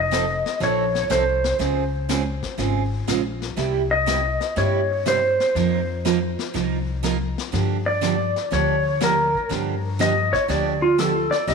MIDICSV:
0, 0, Header, 1, 5, 480
1, 0, Start_track
1, 0, Tempo, 494234
1, 1555, Time_signature, 4, 2, 24, 8
1, 11211, End_track
2, 0, Start_track
2, 0, Title_t, "Electric slide guitar"
2, 0, Program_c, 0, 29
2, 0, Note_on_c, 0, 75, 93
2, 565, Note_off_c, 0, 75, 0
2, 617, Note_on_c, 0, 73, 86
2, 1053, Note_off_c, 0, 73, 0
2, 1082, Note_on_c, 0, 72, 80
2, 1525, Note_off_c, 0, 72, 0
2, 3798, Note_on_c, 0, 75, 117
2, 4396, Note_off_c, 0, 75, 0
2, 4448, Note_on_c, 0, 73, 88
2, 4889, Note_off_c, 0, 73, 0
2, 4933, Note_on_c, 0, 72, 84
2, 5372, Note_off_c, 0, 72, 0
2, 7637, Note_on_c, 0, 74, 110
2, 8234, Note_off_c, 0, 74, 0
2, 8286, Note_on_c, 0, 73, 85
2, 8727, Note_off_c, 0, 73, 0
2, 8776, Note_on_c, 0, 70, 74
2, 9212, Note_off_c, 0, 70, 0
2, 9722, Note_on_c, 0, 75, 91
2, 10031, Note_on_c, 0, 73, 101
2, 10035, Note_off_c, 0, 75, 0
2, 10185, Note_off_c, 0, 73, 0
2, 10199, Note_on_c, 0, 74, 94
2, 10511, Note_on_c, 0, 65, 72
2, 10513, Note_off_c, 0, 74, 0
2, 10664, Note_off_c, 0, 65, 0
2, 10681, Note_on_c, 0, 69, 81
2, 10984, Note_on_c, 0, 74, 90
2, 10994, Note_off_c, 0, 69, 0
2, 11140, Note_off_c, 0, 74, 0
2, 11154, Note_on_c, 0, 75, 92
2, 11211, Note_off_c, 0, 75, 0
2, 11211, End_track
3, 0, Start_track
3, 0, Title_t, "Steel-string acoustic guitar"
3, 0, Program_c, 1, 25
3, 109, Note_on_c, 1, 53, 67
3, 114, Note_on_c, 1, 60, 69
3, 115, Note_on_c, 1, 63, 73
3, 120, Note_on_c, 1, 69, 72
3, 230, Note_off_c, 1, 53, 0
3, 233, Note_off_c, 1, 60, 0
3, 233, Note_off_c, 1, 63, 0
3, 236, Note_off_c, 1, 69, 0
3, 585, Note_on_c, 1, 53, 60
3, 590, Note_on_c, 1, 60, 63
3, 592, Note_on_c, 1, 63, 55
3, 594, Note_on_c, 1, 69, 65
3, 813, Note_off_c, 1, 53, 0
3, 816, Note_off_c, 1, 60, 0
3, 817, Note_off_c, 1, 63, 0
3, 818, Note_off_c, 1, 69, 0
3, 1066, Note_on_c, 1, 53, 65
3, 1066, Note_on_c, 1, 60, 71
3, 1071, Note_on_c, 1, 63, 81
3, 1073, Note_on_c, 1, 69, 82
3, 1189, Note_off_c, 1, 53, 0
3, 1189, Note_off_c, 1, 60, 0
3, 1191, Note_off_c, 1, 63, 0
3, 1192, Note_off_c, 1, 69, 0
3, 1542, Note_on_c, 1, 49, 57
3, 1547, Note_on_c, 1, 56, 61
3, 1552, Note_on_c, 1, 60, 57
3, 1552, Note_on_c, 1, 65, 63
3, 1553, Note_on_c, 1, 68, 61
3, 1772, Note_off_c, 1, 49, 0
3, 1775, Note_off_c, 1, 56, 0
3, 1777, Note_off_c, 1, 60, 0
3, 1777, Note_off_c, 1, 65, 0
3, 1778, Note_off_c, 1, 68, 0
3, 2028, Note_on_c, 1, 49, 72
3, 2032, Note_on_c, 1, 56, 76
3, 2034, Note_on_c, 1, 60, 80
3, 2034, Note_on_c, 1, 65, 78
3, 2036, Note_on_c, 1, 68, 79
3, 2150, Note_off_c, 1, 49, 0
3, 2152, Note_off_c, 1, 56, 0
3, 2153, Note_off_c, 1, 60, 0
3, 2153, Note_off_c, 1, 65, 0
3, 2154, Note_off_c, 1, 68, 0
3, 2502, Note_on_c, 1, 49, 57
3, 2508, Note_on_c, 1, 56, 55
3, 2509, Note_on_c, 1, 60, 58
3, 2512, Note_on_c, 1, 68, 59
3, 2513, Note_on_c, 1, 65, 59
3, 2733, Note_off_c, 1, 49, 0
3, 2735, Note_off_c, 1, 56, 0
3, 2736, Note_off_c, 1, 60, 0
3, 2738, Note_off_c, 1, 65, 0
3, 2738, Note_off_c, 1, 68, 0
3, 2987, Note_on_c, 1, 49, 75
3, 2990, Note_on_c, 1, 56, 75
3, 2991, Note_on_c, 1, 60, 78
3, 2993, Note_on_c, 1, 65, 81
3, 2996, Note_on_c, 1, 68, 77
3, 3110, Note_off_c, 1, 49, 0
3, 3111, Note_off_c, 1, 56, 0
3, 3112, Note_off_c, 1, 60, 0
3, 3113, Note_off_c, 1, 65, 0
3, 3114, Note_off_c, 1, 68, 0
3, 3461, Note_on_c, 1, 48, 57
3, 3466, Note_on_c, 1, 55, 62
3, 3468, Note_on_c, 1, 64, 65
3, 3471, Note_on_c, 1, 58, 63
3, 3474, Note_on_c, 1, 67, 62
3, 3693, Note_off_c, 1, 48, 0
3, 3695, Note_off_c, 1, 55, 0
3, 3696, Note_off_c, 1, 64, 0
3, 3698, Note_off_c, 1, 58, 0
3, 3699, Note_off_c, 1, 67, 0
3, 3946, Note_on_c, 1, 48, 73
3, 3953, Note_on_c, 1, 55, 73
3, 3955, Note_on_c, 1, 58, 78
3, 3960, Note_on_c, 1, 64, 80
3, 3962, Note_on_c, 1, 67, 82
3, 4070, Note_off_c, 1, 48, 0
3, 4073, Note_off_c, 1, 55, 0
3, 4074, Note_off_c, 1, 58, 0
3, 4077, Note_off_c, 1, 64, 0
3, 4078, Note_off_c, 1, 67, 0
3, 4429, Note_on_c, 1, 48, 59
3, 4431, Note_on_c, 1, 55, 57
3, 4433, Note_on_c, 1, 58, 61
3, 4437, Note_on_c, 1, 64, 64
3, 4439, Note_on_c, 1, 67, 64
3, 4657, Note_off_c, 1, 48, 0
3, 4657, Note_off_c, 1, 55, 0
3, 4658, Note_off_c, 1, 58, 0
3, 4661, Note_off_c, 1, 64, 0
3, 4661, Note_off_c, 1, 67, 0
3, 4911, Note_on_c, 1, 48, 74
3, 4913, Note_on_c, 1, 55, 71
3, 4917, Note_on_c, 1, 58, 73
3, 4919, Note_on_c, 1, 67, 78
3, 4921, Note_on_c, 1, 64, 75
3, 5032, Note_off_c, 1, 48, 0
3, 5033, Note_off_c, 1, 55, 0
3, 5035, Note_off_c, 1, 58, 0
3, 5036, Note_off_c, 1, 67, 0
3, 5037, Note_off_c, 1, 64, 0
3, 5398, Note_on_c, 1, 53, 58
3, 5403, Note_on_c, 1, 58, 60
3, 5404, Note_on_c, 1, 63, 57
3, 5408, Note_on_c, 1, 65, 61
3, 5410, Note_on_c, 1, 70, 61
3, 5621, Note_off_c, 1, 53, 0
3, 5623, Note_off_c, 1, 58, 0
3, 5624, Note_off_c, 1, 63, 0
3, 5626, Note_off_c, 1, 65, 0
3, 5627, Note_off_c, 1, 70, 0
3, 5875, Note_on_c, 1, 53, 76
3, 5878, Note_on_c, 1, 58, 78
3, 5883, Note_on_c, 1, 63, 72
3, 5886, Note_on_c, 1, 65, 74
3, 5891, Note_on_c, 1, 70, 80
3, 5994, Note_off_c, 1, 53, 0
3, 5996, Note_off_c, 1, 58, 0
3, 5998, Note_off_c, 1, 63, 0
3, 5999, Note_off_c, 1, 65, 0
3, 6002, Note_off_c, 1, 70, 0
3, 6349, Note_on_c, 1, 53, 58
3, 6351, Note_on_c, 1, 58, 61
3, 6353, Note_on_c, 1, 63, 58
3, 6359, Note_on_c, 1, 65, 62
3, 6363, Note_on_c, 1, 70, 63
3, 6576, Note_off_c, 1, 53, 0
3, 6578, Note_off_c, 1, 58, 0
3, 6578, Note_off_c, 1, 63, 0
3, 6582, Note_off_c, 1, 65, 0
3, 6583, Note_off_c, 1, 70, 0
3, 6825, Note_on_c, 1, 53, 76
3, 6831, Note_on_c, 1, 58, 80
3, 6834, Note_on_c, 1, 63, 73
3, 6837, Note_on_c, 1, 65, 81
3, 6839, Note_on_c, 1, 70, 79
3, 6949, Note_off_c, 1, 53, 0
3, 6952, Note_off_c, 1, 58, 0
3, 6953, Note_off_c, 1, 63, 0
3, 6955, Note_off_c, 1, 65, 0
3, 6956, Note_off_c, 1, 70, 0
3, 7304, Note_on_c, 1, 50, 55
3, 7309, Note_on_c, 1, 53, 58
3, 7310, Note_on_c, 1, 58, 59
3, 7317, Note_on_c, 1, 62, 60
3, 7317, Note_on_c, 1, 67, 63
3, 7533, Note_off_c, 1, 50, 0
3, 7536, Note_off_c, 1, 53, 0
3, 7537, Note_off_c, 1, 58, 0
3, 7540, Note_off_c, 1, 62, 0
3, 7540, Note_off_c, 1, 67, 0
3, 7781, Note_on_c, 1, 50, 74
3, 7787, Note_on_c, 1, 53, 79
3, 7787, Note_on_c, 1, 58, 76
3, 7791, Note_on_c, 1, 62, 76
3, 7794, Note_on_c, 1, 67, 79
3, 7907, Note_off_c, 1, 50, 0
3, 7910, Note_off_c, 1, 53, 0
3, 7910, Note_off_c, 1, 58, 0
3, 7912, Note_off_c, 1, 62, 0
3, 7913, Note_off_c, 1, 67, 0
3, 8261, Note_on_c, 1, 50, 55
3, 8268, Note_on_c, 1, 53, 58
3, 8272, Note_on_c, 1, 58, 60
3, 8275, Note_on_c, 1, 62, 60
3, 8275, Note_on_c, 1, 67, 60
3, 8492, Note_off_c, 1, 50, 0
3, 8495, Note_off_c, 1, 53, 0
3, 8497, Note_off_c, 1, 58, 0
3, 8499, Note_off_c, 1, 62, 0
3, 8499, Note_off_c, 1, 67, 0
3, 8746, Note_on_c, 1, 53, 72
3, 8747, Note_on_c, 1, 50, 69
3, 8751, Note_on_c, 1, 62, 75
3, 8754, Note_on_c, 1, 58, 81
3, 8755, Note_on_c, 1, 67, 80
3, 8869, Note_off_c, 1, 50, 0
3, 8869, Note_off_c, 1, 53, 0
3, 8871, Note_off_c, 1, 62, 0
3, 8873, Note_off_c, 1, 58, 0
3, 8873, Note_off_c, 1, 67, 0
3, 9220, Note_on_c, 1, 50, 58
3, 9225, Note_on_c, 1, 53, 55
3, 9228, Note_on_c, 1, 58, 58
3, 9230, Note_on_c, 1, 62, 59
3, 9231, Note_on_c, 1, 67, 67
3, 9451, Note_off_c, 1, 50, 0
3, 9453, Note_off_c, 1, 53, 0
3, 9455, Note_off_c, 1, 58, 0
3, 9456, Note_off_c, 1, 62, 0
3, 9457, Note_off_c, 1, 67, 0
3, 9703, Note_on_c, 1, 50, 72
3, 9704, Note_on_c, 1, 53, 72
3, 9709, Note_on_c, 1, 58, 70
3, 9711, Note_on_c, 1, 62, 75
3, 9712, Note_on_c, 1, 67, 79
3, 9827, Note_off_c, 1, 50, 0
3, 9827, Note_off_c, 1, 53, 0
3, 9830, Note_off_c, 1, 58, 0
3, 9831, Note_off_c, 1, 62, 0
3, 9831, Note_off_c, 1, 67, 0
3, 10180, Note_on_c, 1, 50, 58
3, 10185, Note_on_c, 1, 53, 55
3, 10188, Note_on_c, 1, 58, 63
3, 10190, Note_on_c, 1, 62, 60
3, 10194, Note_on_c, 1, 67, 67
3, 10411, Note_off_c, 1, 50, 0
3, 10413, Note_off_c, 1, 53, 0
3, 10415, Note_off_c, 1, 58, 0
3, 10416, Note_off_c, 1, 62, 0
3, 10418, Note_off_c, 1, 67, 0
3, 10666, Note_on_c, 1, 50, 75
3, 10670, Note_on_c, 1, 53, 73
3, 10671, Note_on_c, 1, 58, 73
3, 10673, Note_on_c, 1, 62, 77
3, 10677, Note_on_c, 1, 67, 79
3, 10788, Note_off_c, 1, 50, 0
3, 10790, Note_off_c, 1, 53, 0
3, 10791, Note_off_c, 1, 58, 0
3, 10792, Note_off_c, 1, 62, 0
3, 10794, Note_off_c, 1, 67, 0
3, 11144, Note_on_c, 1, 48, 60
3, 11145, Note_on_c, 1, 55, 60
3, 11150, Note_on_c, 1, 58, 62
3, 11153, Note_on_c, 1, 63, 67
3, 11154, Note_on_c, 1, 67, 62
3, 11211, Note_off_c, 1, 48, 0
3, 11211, Note_off_c, 1, 55, 0
3, 11211, Note_off_c, 1, 58, 0
3, 11211, Note_off_c, 1, 63, 0
3, 11211, Note_off_c, 1, 67, 0
3, 11211, End_track
4, 0, Start_track
4, 0, Title_t, "Upright bass"
4, 0, Program_c, 2, 32
4, 0, Note_on_c, 2, 29, 87
4, 401, Note_off_c, 2, 29, 0
4, 586, Note_on_c, 2, 34, 85
4, 998, Note_off_c, 2, 34, 0
4, 1069, Note_on_c, 2, 36, 80
4, 1480, Note_off_c, 2, 36, 0
4, 1548, Note_on_c, 2, 37, 81
4, 2319, Note_off_c, 2, 37, 0
4, 2504, Note_on_c, 2, 32, 78
4, 2917, Note_off_c, 2, 32, 0
4, 2993, Note_on_c, 2, 34, 84
4, 3402, Note_off_c, 2, 34, 0
4, 3468, Note_on_c, 2, 36, 87
4, 4239, Note_off_c, 2, 36, 0
4, 4435, Note_on_c, 2, 43, 82
4, 5203, Note_off_c, 2, 43, 0
4, 5392, Note_on_c, 2, 41, 92
4, 6162, Note_off_c, 2, 41, 0
4, 6358, Note_on_c, 2, 36, 82
4, 7125, Note_off_c, 2, 36, 0
4, 7314, Note_on_c, 2, 43, 86
4, 8082, Note_off_c, 2, 43, 0
4, 8275, Note_on_c, 2, 38, 87
4, 9043, Note_off_c, 2, 38, 0
4, 9234, Note_on_c, 2, 43, 87
4, 10002, Note_off_c, 2, 43, 0
4, 10184, Note_on_c, 2, 38, 77
4, 10956, Note_off_c, 2, 38, 0
4, 11144, Note_on_c, 2, 36, 87
4, 11211, Note_off_c, 2, 36, 0
4, 11211, End_track
5, 0, Start_track
5, 0, Title_t, "Drums"
5, 119, Note_on_c, 9, 38, 67
5, 119, Note_on_c, 9, 44, 60
5, 216, Note_off_c, 9, 38, 0
5, 216, Note_off_c, 9, 44, 0
5, 445, Note_on_c, 9, 38, 40
5, 542, Note_off_c, 9, 38, 0
5, 595, Note_on_c, 9, 25, 53
5, 595, Note_on_c, 9, 38, 46
5, 692, Note_off_c, 9, 38, 0
5, 921, Note_on_c, 9, 38, 38
5, 1018, Note_off_c, 9, 38, 0
5, 1073, Note_on_c, 9, 38, 73
5, 1073, Note_on_c, 9, 44, 55
5, 1170, Note_off_c, 9, 38, 0
5, 1170, Note_off_c, 9, 44, 0
5, 1399, Note_on_c, 9, 38, 42
5, 1496, Note_off_c, 9, 38, 0
5, 1552, Note_off_c, 9, 25, 0
5, 1552, Note_on_c, 9, 25, 47
5, 1552, Note_on_c, 9, 38, 45
5, 1649, Note_off_c, 9, 38, 0
5, 2033, Note_on_c, 9, 38, 68
5, 2033, Note_on_c, 9, 44, 57
5, 2130, Note_off_c, 9, 38, 0
5, 2130, Note_off_c, 9, 44, 0
5, 2356, Note_on_c, 9, 38, 42
5, 2359, Note_on_c, 9, 36, 49
5, 2453, Note_off_c, 9, 38, 0
5, 2456, Note_off_c, 9, 36, 0
5, 2509, Note_off_c, 9, 25, 0
5, 2509, Note_on_c, 9, 25, 46
5, 2509, Note_on_c, 9, 38, 45
5, 2606, Note_off_c, 9, 38, 0
5, 2991, Note_on_c, 9, 38, 72
5, 2991, Note_on_c, 9, 44, 57
5, 3088, Note_off_c, 9, 38, 0
5, 3088, Note_off_c, 9, 44, 0
5, 3318, Note_on_c, 9, 38, 42
5, 3415, Note_off_c, 9, 38, 0
5, 3471, Note_off_c, 9, 25, 0
5, 3471, Note_on_c, 9, 25, 55
5, 3471, Note_on_c, 9, 38, 46
5, 3569, Note_off_c, 9, 38, 0
5, 3955, Note_on_c, 9, 38, 67
5, 3955, Note_on_c, 9, 44, 58
5, 4052, Note_off_c, 9, 38, 0
5, 4052, Note_off_c, 9, 44, 0
5, 4279, Note_on_c, 9, 38, 41
5, 4377, Note_off_c, 9, 38, 0
5, 4436, Note_off_c, 9, 25, 0
5, 4436, Note_on_c, 9, 25, 52
5, 4436, Note_on_c, 9, 38, 44
5, 4533, Note_off_c, 9, 38, 0
5, 4916, Note_on_c, 9, 38, 72
5, 4916, Note_on_c, 9, 44, 63
5, 5013, Note_off_c, 9, 38, 0
5, 5013, Note_off_c, 9, 44, 0
5, 5245, Note_on_c, 9, 38, 40
5, 5342, Note_off_c, 9, 38, 0
5, 5400, Note_off_c, 9, 25, 0
5, 5400, Note_on_c, 9, 25, 57
5, 5400, Note_on_c, 9, 38, 47
5, 5497, Note_off_c, 9, 38, 0
5, 5879, Note_on_c, 9, 38, 69
5, 5879, Note_on_c, 9, 44, 54
5, 5977, Note_off_c, 9, 38, 0
5, 5977, Note_off_c, 9, 44, 0
5, 6205, Note_on_c, 9, 38, 42
5, 6302, Note_off_c, 9, 38, 0
5, 6358, Note_off_c, 9, 25, 0
5, 6358, Note_on_c, 9, 25, 48
5, 6358, Note_on_c, 9, 38, 44
5, 6456, Note_off_c, 9, 38, 0
5, 6837, Note_on_c, 9, 38, 70
5, 6837, Note_on_c, 9, 44, 51
5, 6934, Note_off_c, 9, 38, 0
5, 6934, Note_off_c, 9, 44, 0
5, 7168, Note_on_c, 9, 38, 43
5, 7265, Note_off_c, 9, 38, 0
5, 7320, Note_off_c, 9, 25, 0
5, 7320, Note_on_c, 9, 25, 49
5, 7320, Note_on_c, 9, 38, 47
5, 7417, Note_off_c, 9, 38, 0
5, 7795, Note_on_c, 9, 38, 67
5, 7795, Note_on_c, 9, 44, 59
5, 7892, Note_off_c, 9, 38, 0
5, 7892, Note_off_c, 9, 44, 0
5, 8121, Note_on_c, 9, 38, 42
5, 8218, Note_off_c, 9, 38, 0
5, 8277, Note_off_c, 9, 25, 0
5, 8277, Note_on_c, 9, 25, 54
5, 8277, Note_on_c, 9, 38, 48
5, 8374, Note_off_c, 9, 38, 0
5, 8752, Note_on_c, 9, 38, 75
5, 8752, Note_on_c, 9, 44, 54
5, 8849, Note_off_c, 9, 38, 0
5, 8849, Note_off_c, 9, 44, 0
5, 9079, Note_on_c, 9, 36, 51
5, 9176, Note_off_c, 9, 36, 0
5, 9234, Note_off_c, 9, 25, 0
5, 9234, Note_on_c, 9, 25, 55
5, 9234, Note_on_c, 9, 38, 48
5, 9331, Note_off_c, 9, 38, 0
5, 9714, Note_on_c, 9, 38, 72
5, 9714, Note_on_c, 9, 44, 60
5, 9811, Note_off_c, 9, 38, 0
5, 9811, Note_off_c, 9, 44, 0
5, 10038, Note_on_c, 9, 36, 66
5, 10039, Note_on_c, 9, 38, 41
5, 10135, Note_off_c, 9, 36, 0
5, 10136, Note_off_c, 9, 38, 0
5, 10193, Note_off_c, 9, 25, 0
5, 10193, Note_on_c, 9, 25, 43
5, 10193, Note_on_c, 9, 38, 46
5, 10291, Note_off_c, 9, 38, 0
5, 10670, Note_on_c, 9, 38, 71
5, 10670, Note_on_c, 9, 44, 59
5, 10767, Note_off_c, 9, 38, 0
5, 10767, Note_off_c, 9, 44, 0
5, 10996, Note_on_c, 9, 38, 43
5, 11093, Note_off_c, 9, 38, 0
5, 11150, Note_off_c, 9, 25, 0
5, 11150, Note_on_c, 9, 25, 52
5, 11150, Note_on_c, 9, 38, 49
5, 11211, Note_off_c, 9, 25, 0
5, 11211, Note_off_c, 9, 38, 0
5, 11211, End_track
0, 0, End_of_file